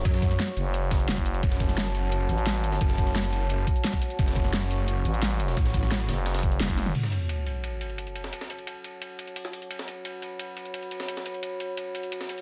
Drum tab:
CC |--------------------------------|--------------------------------|--------------------------------|--------------------------------|
RD |x---x-x-x---x---x---x---x-------|x---x---x---x---x---x---x---x---|x---x-x-x---x---x---x---x---x---|x---x---x---x---x---x---x---x---|
HH |x-x-x---x---x---x---x-x-x-x-x-x-|x-x-x---x---x---x---x-x-x-x-x-x-|x-x-x---x---x---x---x-x-x-x-x-x-|x-x-x---x---x---x---x-x-x-x-x-x-|
SH |----x-------x-------x-x-----x---|----x-------x-------x-------x---|----x-------x-------x-x-----x---|----x-------x-------x-------x---|
SD |--o---o-o-o---------o---o-o-----|--o---o-o-o-------------o-----o-|--o---o-o-o-------------o-o-----|--o---o-o-o-------------o-----o-|
T1 |--------------------------------|--------------------------------|--------------------------------|--------------------------------|
T2 |--------------------------------|--------------------------------|--------------------------------|--------------------------------|
BD |o---o---------------o-----o-----|o---o---------------------------|o---o---------------o-----o-----|o---o---------------------------|

CC |--------------------------------|x-------------------------------|--------------------------------|--------------------------------|
RD |x---x-x-x---x---x-xxx---x---x---|x---x---x---x---x---x---x---x---|x---x-x-x---x---x---x---x---x---|x---x---x---x---x---x---x---x---|
HH |x-x-x---x---x---x---x-x-x-x-x-x-|x-x-x---x---x---x---x-x-x-x-x-x-|x-x-x---x---x---x---x-x-x-x-x-x-|x-x-x---x---x---x---x-x-x-x-x-x-|
SH |----x-----x-x-------x-x-----x---|--------------------------------|--------------------------------|--------------------------------|
SD |--o---o-o-o-o---o-oo----o-o-----|--o---------------------------o-|--o-----------------------o-----|--o---------------------------o-|
T1 |----------------------------o---|--------------------------------|--------------------------------|--------------------------------|
T2 |------------------------------o-|--------------------------------|--------------------------------|--------------------------------|
BD |o---o---------------o-----o-----|--------------------------------|--------------------------------|--------------------------------|

CC |--------------------------------|
RD |x---x-x-x---x---x---x---x---x---|
HH |x-x-x---x---x---x---x-x-x-x-x-x-|
SH |--------------------------------|
SD |--o-----------------------o-----|
T1 |--------------------------------|
T2 |--------------------------------|
BD |--------------------------------|